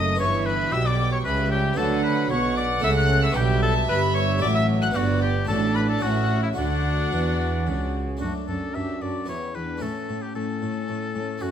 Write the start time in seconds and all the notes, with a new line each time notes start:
Already playing: F#1 F#2 A3 D#4 A4 D#5 D#6
0.15 B3 E4 G4
0.19 G1 G2 E3 C#5 E5 C#6
0.46 B4 B5
0.72 B1 B2 G3 E5 G5 E6
0.86 D5 D6
1.12 C#5 C#6
1.25 C#2 C#3 G3 B4 E5 B5
1.51 G4 G5
1.73 B3 D4 F#4
1.77 D2 D3 F#3 A4 F#5 A5
2.03 B4 B5
2.30 B1 B2 B3 C#5 F#5 C#6
2.56 D5 D6
2.79 A3 E4 A4 E6
2.83 C#2 C#3 A3 E5
2.96 F#5 F#6
3.23 E5 E6
3.31 G3 B3 D4 G4
3.35 B1 B2 G4 E5 G5
3.62 A4 A5
3.88 G1 G2 G3 B4 B5
4.15 C#5 C#6
4.37 C#4 A4
4.42 A1 A2 F#3 D5 D6
4.55 E5 E6
4.82 F#5 F#6
4.91 B3 D4 G4 F#5
4.95 G1 G2 F#4 D5
5.21 G4 G5
5.44 A1 A2 A3 D4 F#4 A4 A5
5.49 A2 D5
5.74 B4 B5
5.89 A4 A5
5.99 A3 C#4 E4 F#4 F#5
6.03 A1 A2 E5
6.43 E4 E5
6.53 A3 D4 F#4 D5 F#5
6.57 D2 D3 F#4
7.12 E2 E3
7.67 C#2 C#3
8.17 A3 D4 F#4
8.21 F#2 A3 D4 A5
8.48 F#2 C#4 D4 A4 A5
8.74 F#2 D4 G4 E5 A5
9.01 F#2 D4 F#4 D5 A5
9.25 E2 B3 E4 C#5 G5
9.55 E2 B3 D4 B4 G5
9.77 A3 C#4 E4
9.82 A2 C#4 A4 A5
10.08 A2 C#4 A5
10.21 B3 G4
10.35 A2 C#4 A4 A5
10.62 A2 C#4 A5
10.88 A2 C#4 A5
11.15 A2 C#4 A5
11.38 A3 C#4 F#4
11.42 F#2 A3 C#4 F#4 A5